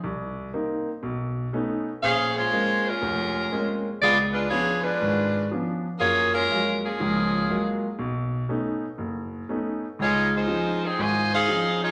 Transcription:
X:1
M:4/4
L:1/8
Q:"Swing" 1/4=121
K:Db
V:1 name="Saxophone section"
z8 | [DAcf] [A,Fcd]2 [A,DFB]4 z | [_CFA=d] [A,=DF_c] [CFA_d] [A,=DFc]3 z2 | [B,FAd] [A,DFB]2 [F,B,DA]4 z |
z8 | [A,EFd] [A,EFc]2 [F,CEA] [Fcea] [EAcf]2 [A,EFd] |]
V:2 name="Grand piano"
C,,2 [B,CE] z _C,,2 [=A,_CDE] z | B,,,2 [A,B,CD] z F,,,2 [A,B,CD] z | D,,2 [F,_CD=D] z A,,,2 [F,C_D=D] z | [G,,B,]2 [G,A,B,F] z [D,,F,]2 [G,A,B,F] z |
_C,,2 [=A,_CDE] z G,,,2 [A,CDE] z | D,,2 [F,CDE] z A,,,2 [F,CDE] z |]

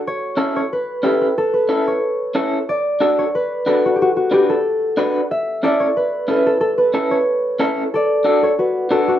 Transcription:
X:1
M:4/4
L:1/16
Q:1/4=183
K:D
V:1 name="Harp"
c6 c2 B4 A2 B2 | A2 B4 c8 z2 | d6 c2 B4 A2 F3/2 G/2 | F2 F2 G2 A8 z2 |
e4 d2 c2 B4 A2 A2 | A2 B4 c8 z2 | [Ad]6 [Ac]2 [FB]4 [FA]2 [DF]2 |]
V:2 name="Clean electric guitar"
z4 [CEA]2 z6 [CEG]2 z2 | z4 [CEA]2 z6 [CEA]2 z2 | z4 [DFA]2 z6 [DFB]2 z2 | z4 [DFB]2 z6 [DFB]2 z2 |
z4 [CEA]2 z6 [CEB]2 z2 | z4 [CEA]2 z6 [CEA]2 z2 | z4 [DFA]2 z6 [DFA]2 z2 |]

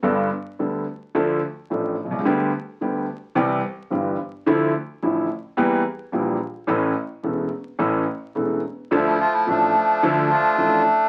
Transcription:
X:1
M:4/4
L:1/16
Q:1/4=108
K:Dm
V:1 name="Bandoneon"
z16 | z16 | z16 | z16 |
D E F E D6 F4 z2 |]
V:2 name="Bandoneon"
z16 | z16 | z16 | z16 |
[F,A,]4 [F,A,]6 [A,D]6 |]
V:3 name="Grand piano" clef=bass
[G,,,G,,G,=B,DA]2 z2 [D,,D,G,B,DA]2 z2 [D,,D,F,A,DA]2 z2 [A,,,A,,F,A,DA]2 z/2 =B,,,/2 C,,/2 ^C,,/2 | [D,,D,G,=B,G]2 z2 [D,,D,G,B,G]2 z2 [C,,C,E,G,CG]2 z2 [G,,,G,,E,G,CG]2 z2 | [D,,D,F,A,E]2 z2 [A,,,A,,D,F,A,E]2 z2 [E,,E,G,B,G]2 z2 [B,,,B,,E,G,B,G]2 z2 | [A,,,A,,E,A,^CA]2 z2 [E,,,E,,E,A,CA]2 z2 [A,,,A,,E,A,CA]2 z2 [E,,,E,,E,A,CA]2 z2 |
[D,,D,F,A,DA]2 z2 [A,,,A,,F,A,DA]2 z2 [D,,D,F,A,DA]2 z2 [A,,,A,,F,A,DA]2 z2 |]
V:4 name="Upright bass" clef=bass
G,,,3/2 z2 z/2 D,,3/2 z2 z/2 D,,3/2 z2 z/2 A,,,3/2 z =B,,,/2 C,,/2 ^C,,/2 | D,,3/2 z2 z/2 D,,3/2 z2 z/2 C,,3/2 z2 z/2 G,,,3/2 z2 z/2 | D,,3/2 z2 z/2 A,,,3/2 z2 z/2 E,,3/2 z2 z/2 B,,,3/2 z2 z/2 | A,,,3/2 z2 z/2 E,,,3/2 z2 z/2 A,,,3/2 z2 z/2 E,,,3/2 z2 z/2 |
D,,3/2 z2 z/2 A,,,3/2 z2 z/2 D,,3/2 z2 z/2 A,,,3/2 z2 z/2 |]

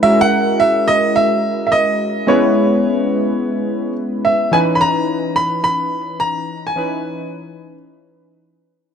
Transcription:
X:1
M:4/4
L:1/16
Q:"Swing 16ths" 1/4=107
K:C#dor
V:1 name="Grand piano"
e f3 e2 d2 e3- e/2 e/2 d4 | c12 z2 e2 | g3/2 b/2 a4 b2 b4 a3 g- | g6- g z8 z |]
V:2 name="Synth keys"
[G,CEFA]16 | [G,B,CEB]16 | [E,CDB]16 | [E,CDB]16 |]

